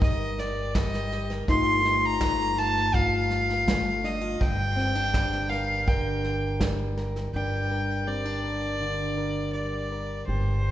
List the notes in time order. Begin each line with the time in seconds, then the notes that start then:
Already playing: G1 G3 D#4
0.01 G2 A#4 D#5, kick, snare
0.38 D5, snare
0.75 G3 D#5, kick, snare
0.94 snare
1.12 G4, snare
1.30 A#4, snare
1.48 G1 G2 A3 D#4 F4 C6, kick, snare
1.84 D#4, snare
2.05 A#5
2.21 A3, kick, snare
2.57 F4 A5, snare
2.76 snare
2.93 G2 F4 F5, kick, snare
3.30 snare
3.50 snare
3.68 A3, kick, snare
4.04 D4 D#5, snare
4.22 F4
4.41 G1 G2 G5, kick, snare
4.76 C4, snare
4.95 D4
5.13 G3, kick, snare
5.33 snare
5.49 A#4 F5, snare
5.87 D3 A#4 G5, kick, snare
6.24 snare
6.60 G3, kick, snare
6.97 A#4, snare
7.16 snare
7.34 G1 G2 G3 D4 A#4 G5
7.71 A#4
8.07 G3 C4 D5
8.26 D4
8.44 A#4
8.80 D3 D4
9.18 A#4
9.53 G3 D5
9.92 A#4
10.27 G1 G2 G4 C5
10.65 G4